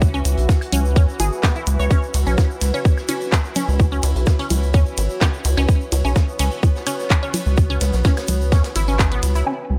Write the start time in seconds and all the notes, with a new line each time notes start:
Already playing: C#2 E3 F#4 B4 E5
0.02 kick, shaker
0.14 C#4, shaker
0.25 C#2, closed hi-hat, shaker
0.37 B1, closed hi-hat, shaker
0.49 kick, snare, low bongo, shaker
0.61 closed hi-hat, high woodblock, shaker
0.72 C#2 C#4, closed hi-hat, low conga, shaker
0.85 shaker
0.96 E2 C#4, kick, shaker
1.09 shaker
1.20 G#1 G#4, closed hi-hat, low bongo, shaker
1.32 shaker
1.43 B3, kick, snare, clap, shaker
1.55 E4, shaker
1.66 C#2, closed hi-hat, shaker
1.79 C#2 C#5, shaker
1.91 C#4 E4, kick, shaker
2.03 shaker
2.14 C#2, closed hi-hat, ride, shaker
2.26 B1 C#4, shaker
2.38 kick, snare, low bongo, shaker
2.51 shaker
2.61 C#2 C#5, snare, closed hi-hat, ride, shaker
2.74 C#4, shaker
2.85 kick, shaker
2.97 snare, high woodblock, shaker
3.08 C#4, closed hi-hat, ride, low bongo, shaker
3.21 shaker
3.32 kick, snare, clap, shaker
3.45 snare, shaker
3.56 C#4, closed hi-hat, ride, low conga, shaker
3.68 C#2, shaker
3.79 kick, low bongo, shaker
3.92 C#4, shaker
4.03 C#2, closed hi-hat, ride, shaker
4.16 B1, closed hi-hat, shaker
4.26 kick, snare, high woodblock, shaker
4.39 C#4, closed hi-hat, ride, shaker
4.50 C#2, closed hi-hat, ride, low bongo, low conga, shaker
4.63 shaker
4.74 E2 C#4, kick, shaker
4.86 shaker
4.97 G#1, closed hi-hat, ride, shaker
5.10 shaker
5.21 C#4, kick, snare, clap, low bongo, shaker
5.34 shaker
5.45 C#2, closed hi-hat, ride, shaker
5.57 C#2 C#4, high woodblock, shaker
5.69 B3, kick, shaker
5.81 shaker
5.92 C#2, closed hi-hat, ride, low bongo, shaker
6.05 B1 C#4, shaker
6.16 kick, snare, shaker
6.29 shaker
6.39 C#2 C#4, snare, closed hi-hat, ride, shaker
6.51 shaker
6.63 kick, low bongo, shaker
6.76 snare, shaker
6.87 C#4, closed hi-hat, ride, high woodblock, shaker
6.99 snare, shaker
7.10 kick, clap, shaker
7.23 C#4, shaker
7.34 closed hi-hat, ride, low bongo, low conga, shaker
7.46 C#2, shaker
7.57 kick, shaker
7.70 C#4, shaker
7.80 C#2, snare, closed hi-hat, ride, shaker
7.93 B1, snare, shaker
8.04 C#4, kick, snare, low bongo, shaker
8.17 snare, ride, high woodblock, shaker
8.27 C#2, closed hi-hat, ride, low conga, shaker
8.41 shaker
8.52 E2 C#4, kick, snare, shaker
8.64 snare, closed hi-hat, shaker
8.75 G#1 E4, closed hi-hat, ride, low bongo, shaker
8.88 C#4, shaker
8.99 kick, clap, shaker
9.12 B3, closed hi-hat, shaker
9.23 C#2, closed hi-hat, ride, shaker
9.35 E4, shaker
9.46 C#4 F#4
9.70 C#2